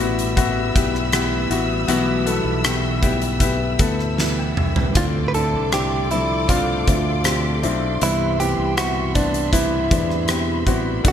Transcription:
Already playing: fingered electric bass A1, felt piano B2 G4 A4, string section G3 E5 B5 E6
0.00 nylon-string guitar G3 B3 E4, felt piano B3 E4 F#4, closed hi-hat
0.19 closed hi-hat
0.36 felt piano B3 E4 F#4, kick, closed hi-hat
0.75 fingered electric bass B1, felt piano B3 E4 G4, kick, closed hi-hat
0.95 cross-stick
1.12 nylon-string guitar E3 G3 B3 E4, felt piano B3 E4 G4, cross-stick, closed hi-hat
1.50 fingered electric bass A1, felt piano B3 E4 F#4, closed hi-hat
1.88 fingered electric bass B1, nylon-string guitar B2 E3 G3 B3 E4, felt piano B2 B3 E4 F#4, closed hi-hat
2.26 felt piano B3 E4 A4, closed hi-hat
2.45 fingered electric bass B1
2.64 felt piano B3 E4 G4, cross-stick, closed hi-hat
3.02 nylon-string guitar G3 B3 E4, felt piano B3 E4 G4, kick, closed hi-hat
3.22 closed hi-hat
3.40 felt piano B3 E4 G4, kick, closed hi-hat
3.79 fingered electric bass D2, felt piano B3 E4 A4, kick, closed hi-hat
3.99 cross-stick
4.17 nylon-string guitar E3 G3 B3 E4, snare
4.39 felt piano G5
4.57 fingered electric bass C2, felt piano E5, mid tom
4.76 felt piano B4, floor tom
4.94 fingered electric bass D2, felt piano A2 C4 D4 F4, nylon-string guitar D3 A3 C4, clean electric guitar F4, string section A4 D5 C6 D6, kick, closed hi-hat
5.28 clean electric guitar B4
5.34 felt piano C4 D4 E4, clean electric guitar A4, closed hi-hat
5.54 fingered electric bass C2
5.72 felt piano C4 D4 E4, clean electric guitar G4, cross-stick, closed hi-hat
6.11 felt piano F3 C4 D4, clean electric guitar E4, closed hi-hat
6.49 nylon-string guitar D3 A3 C4 F4, felt piano C4 D4 F4, clean electric guitar F4, kick, closed hi-hat
6.87 fingered electric bass D2, felt piano C4 D4 E5, kick, closed hi-hat
7.24 felt piano C4 D4 G4, cross-stick, closed hi-hat
7.62 fingered electric bass B1, nylon-string guitar A3 C4 F4, felt piano C4 D4 E4, closed hi-hat
8.01 fingered electric bass C2, felt piano G2 B3 C4 E4, nylon-string guitar C3 E3 G3 B3, string section G3 E5 B5, clean electric guitar E4, closed hi-hat
8.05 nylon-string guitar E4
8.39 felt piano B3 C4 E4, clean electric guitar G4, closed hi-hat
8.58 fingered electric bass C2
8.77 felt piano B3 C4 E4, clean electric guitar F#4, cross-stick, closed hi-hat
9.15 felt piano B3 C4 D4, clean electric guitar D4, kick, closed hi-hat
9.34 closed hi-hat
9.52 nylon-string guitar E3 G3 B3 E4, felt piano B3 C4 E4, clean electric guitar E4, kick, closed hi-hat
9.91 fingered electric bass E2, felt piano B3 C4 D4, kick, closed hi-hat
10.10 cross-stick
10.28 felt piano B3 C4 G4, cross-stick, closed hi-hat
10.66 fingered electric bass A1, nylon-string guitar G3 B3 E4, felt piano B3 C4 F#4, kick, closed hi-hat
11.03 fingered electric bass B1, nylon-string guitar B2 A3 D4, felt piano A3 B3 D4, string section A4 F#5 D6, kick, closed hi-hat
11.08 clean electric guitar F#4

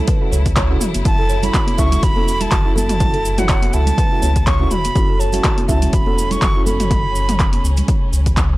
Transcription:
Already playing: string section C#3 F#3 A3 E4, synth stab C#4 E4 F#4 A4, flute A5
0.07 kalimba B4, kick, closed hi-hat, cabasa
0.21 synth stab C#4 E4 F#4 A4
0.32 sub bass C#2, kalimba C#5, cabasa
0.46 kick, closed hi-hat, cabasa
0.56 kalimba C#5, kick, clap, closed hi-hat, cabasa
0.70 synth stab C#4 E4 F#4 A4
0.80 kalimba F#4, mid tom, cabasa
0.94 sub bass F#1, closed hi-hat, high conga, cabasa
1.05 sub bass F#1, synth stab C#4 E4 F#4 A4, kalimba F#4, flute A5, kick, closed hi-hat, cabasa
1.18 kalimba A4
1.29 kalimba C#5, cabasa
1.43 synth stab C#4 E4 F#4 C#5, flute B5, closed hi-hat, low conga, cabasa
1.54 kalimba F#4, kick, clap, closed hi-hat, cabasa
1.67 closed hi-hat, high conga
1.78 sub bass C#2, synth stab C#4 E4 F#4 A4, kalimba E5, flute C#6, kick, cabasa
1.92 closed hi-hat, low conga, cabasa
2.03 sub bass E1, kalimba F#4, flute B5, kick, closed hi-hat, cabasa
2.16 synth stab C#4 E4 F#4 A4, kalimba A4, high conga
2.28 cabasa
2.40 kalimba E4, flute A5, closed hi-hat, low conga, cabasa
2.51 sub bass F#1, kalimba F#4, kick, clap, closed hi-hat, mid tom, cabasa
2.65 synth stab C#4 E4 F#4 A4
2.76 kalimba A4, flute A5, high conga, low conga, cabasa
2.89 kalimba F#4, closed hi-hat, mid tom, cabasa
3.00 synth stab C#4 E4 F#4 A4, kick, closed hi-hat, mid tom, cabasa
3.14 kalimba A4, closed hi-hat
3.25 cabasa
3.38 synth stab C#4 E4 F#4 C#5, kalimba F#4, flute F#5, closed hi-hat, mid tom, low conga, cabasa
3.49 kalimba C#5, kick, clap, closed hi-hat, cabasa
3.62 kalimba F#4, closed hi-hat, high conga
3.73 sub bass C#2, synth stab C#4 E4 F#4 A4, flute A5, cabasa
3.87 closed hi-hat, low conga, cabasa
3.98 kalimba B4, kick, closed hi-hat, cabasa
4.12 synth stab C#4 E4 F#4 A4
4.22 sub bass C#2, kalimba C#5, high conga, cabasa
4.36 kick, closed hi-hat, cabasa
4.46 kalimba C#5, flute C#6, kick, clap, closed hi-hat, cabasa
4.60 synth stab C#4 E4 F#4 A4
4.71 sub bass E1, kalimba F#4, flute B5, mid tom, cabasa
4.84 closed hi-hat, high conga, cabasa
4.95 sub bass F#1, string section C#4, synth stab C#4 E4 F#4 A4, kalimba F#4, kick, closed hi-hat, cabasa
5.09 kalimba A4
5.19 kalimba C#5, flute A5, cabasa
5.33 synth stab C#4 E4 F#4 C#5, closed hi-hat, low conga, cabasa
5.44 kalimba F#4, kick, clap, closed hi-hat, cabasa
5.58 closed hi-hat, high conga
5.68 sub bass C#2, synth stab C#4 E4 F#4 A4, kalimba E5, flute A5, kick, cabasa
5.82 closed hi-hat, low conga, cabasa
5.93 sub bass E1, kalimba F#4, flute B5, kick, closed hi-hat, cabasa
6.06 synth stab C#4 E4 F#4 A4, kalimba A4, high conga
6.18 cabasa
6.31 kalimba E4, flute C#6, closed hi-hat, low conga, cabasa
6.41 sub bass F#1, kalimba F#4, kick, clap, closed hi-hat, mid tom, cabasa
6.56 synth stab C#4 E4 F#4 A4
6.66 kalimba A4, flute B5, high conga, low conga, cabasa
6.80 kalimba F#4, closed hi-hat, mid tom, cabasa
6.91 kick, closed hi-hat, mid tom, cabasa
7.15 cabasa
7.29 closed hi-hat, mid tom, low conga, cabasa
7.40 kick, clap, closed hi-hat, cabasa
7.53 closed hi-hat, high conga
7.64 sub bass C#2, cabasa
7.77 closed hi-hat, low conga, cabasa
7.88 kick, closed hi-hat, cabasa
8.13 sub bass C#2, cabasa
8.26 kick, closed hi-hat, cabasa
8.37 kick, clap, closed hi-hat, cabasa

